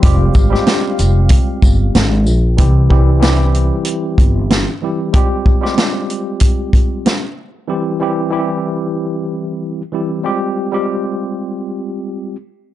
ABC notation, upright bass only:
X:1
M:4/4
L:1/16
Q:"Swing 16ths" 1/4=94
K:Fm
V:1 name="Upright bass" clef=bass
F,,,2 A,,, z3 F,,,2 z2 G,,,2 A,,,2 B,,,2 | C,,6- C,, z3 G,,,3 z3 | z16 | z16 |
z16 |]